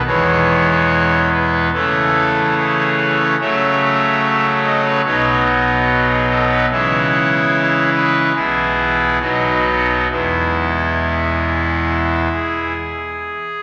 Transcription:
X:1
M:4/4
L:1/16
Q:1/4=72
K:E
V:1 name="Pipe organ"
c6 B2 A4 G3 c | e6 d B c2 F3 G A B | c6 B2 G4 F4 | E8- E2 G6 |]
V:2 name="Pipe organ" clef=bass
[E,,,E,,E,G,B,]8 [C,E,A,C]8 | [C,F,A,C]8 [B,,,B,,F,B,D]8 | [C,E,G,E]8 [B,,,B,,E,B,E]4 [B,,,B,,F,B,D]4 | [E,,,E,,G,B,]8- [E,,,E,,G,B,]2 z6 |]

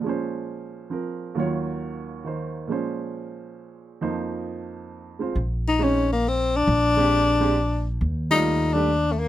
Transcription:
X:1
M:3/4
L:1/16
Q:"Swing" 1/4=136
K:Bbm
V:1 name="Tenor saxophone"
z12 | z12 | z12 | z12 |
z2 E2 D2 B,2 C2 =D2- | =D8- D2 z2 | z2 E4 =D3- D/2 =A,/2 B,2 |]
V:2 name="Upright piano"
[B,,F,A,Dc]8 [F,CB]4 | [E,,E,G,Fd]8 [E,Ec]4 | [B,,F,A,Dc]12 | [F,,F,B,Ec]8- [F,,F,B,Ec]2 [A,CFc]2 |
z4 [A,CDE]2 z6 | z2 [A,C=D=G]4 [A,CDG]2 z4 | z2 [=G,=A,F=d]4 [G,A,=D=G]2 z4 |]
V:3 name="Upright bass" clef=bass
z12 | z12 | z12 | z12 |
B,,,12 | B,,,12 | E,,12 |]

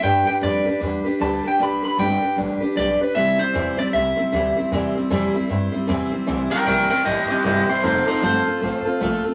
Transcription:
X:1
M:4/4
L:1/8
Q:"Swing" 1/4=154
K:C
V:1 name="Clean electric guitar"
g g d2 z2 a g | b b g2 z2 d B | e c2 d e4- | e6 z2 |
z [_Bg] [Bg] [Bg] [G_e] [Ge] [Ge] [=Ec] | [_Ec] [Ec] c4 z2 |]
V:2 name="Steel-string acoustic guitar"
[G,DGB] [DGB] [G,DGB] [DGB] [G,DGB] [DGB] [G,DGB] [DGB] | [G,DGB] [DGB] [G,DGB] [DGB] [G,DGB] [DGB] [G,DGB] [DGB] | [C,E,G,CEc] [G,CEc] [C,E,G,CEc] [G,CEc] [G,CEc] [G,CEc] [C,E,G,CEc] [G,CEc] | [C,E,G,CEc] [G,CEc] [C,E,G,CEc] [G,CEc] [G,CEc] [G,CEc] [C,E,G,CEc] [G,CEc] |
[C,E,G,CEc] [G,CEc] [C,E,G,CEc] [G,CEc] [G,CEc] [G,CEc] [C,E,G,CEc] [G,CEc] | [F,A,CFA] [CFA] [F,A,CFA] [CFA] [A,CFA] [CFA] [F,A,CFA] [CFA] |]
V:3 name="Upright bass" clef=bass
G,, z F,, z E,, z D,, z | B,,, z G,,, z A,,, z B,,, z | C,, z E,, z C,, z D,, z | E,, z F,, z G,, z E,, z |
C,, z _B,,, z A,,, z G,,, z | F,,, z G,,, z A,,, z _B,,, z |]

